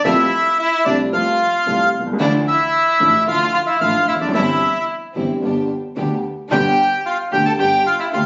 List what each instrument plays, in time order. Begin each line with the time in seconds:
0.04 double bass F2, upright piano F2 F3 A3 C4 G4, string section G3 A3 F4, violin E4, bandoneon E5
0.59 violin E4, bandoneon E5
0.85 double bass C2, upright piano C2 C3 F3 A3 C4 G4, string section G3 A3 F4, violin D4, bandoneon D5
1.12 double bass F2, upright piano F2 F3 A3 C4 G4, string section G3 A3 F4, violin F4, bandoneon F5
1.66 double bass C2, upright piano C2 C3 F3 A3 C4 G4, string section G3 A3 F4
1.93 double bass C2
2.00 upright piano B1
2.07 upright piano C2
2.13 upright piano C#2
2.19 double bass D2, upright piano D2 D3 E3 A3 D4 F4, string section F3 D4 E4, violin D4, bandoneon D5
2.48 violin E4, bandoneon E5
3.00 upright piano A1 A2 E3 A3 D4 F4, double bass A1, string section F3 D4 E4
3.27 upright piano D2 D3 E3 A3 D4 F4, double bass D2, string section F3 D4 E4, violin F4, bandoneon F5
3.54 violin F4, bandoneon F5
3.67 violin E4, bandoneon E5
3.81 double bass A1, upright piano A1 A2 E3 A3 D4 F4, string section F3 D4 E4, violin F4, bandoneon F5
4.08 double bass F1, violin E4, bandoneon E5
4.15 upright piano E2
4.21 upright piano F2, violin D4, bandoneon D5
4.29 upright piano F#2
4.34 double bass G1, upright piano G1 G2 E3 G3 C4 G4, string section G3 C4 E4, violin E4, bandoneon E5
5.15 double bass G1, upright piano G1 G2 E3 G3 C4 G4, string section G3 C4 E4
5.42 double bass G1, upright piano G1 G2 D3 G3 B3 G4, string section B3 D4 G4
5.96 upright piano D2 D3 G3 B3 G4, double bass D2, string section B3 D4 G4
6.51 upright piano G1 G2 D3 G3 B3 G4, double bass G1, string section B3 D4 G4, violin G4, bandoneon G5
7.06 violin F4, bandoneon F5
7.32 double bass D2, upright piano D2 D3 G3 B3 G4, string section B3 D4 G4, violin G4, bandoneon G5
7.45 violin A4, bandoneon A5
7.59 double bass G1, upright piano G1 G2 D3 G3 B3 G4, string section B3 D4 G4, violin G4, bandoneon G5
7.87 violin F4, bandoneon F5
7.99 violin E4, bandoneon E5
8.13 upright piano D2 D3 G3 B3 G4, double bass D2, string section B3 D4 G4, violin F4, bandoneon F5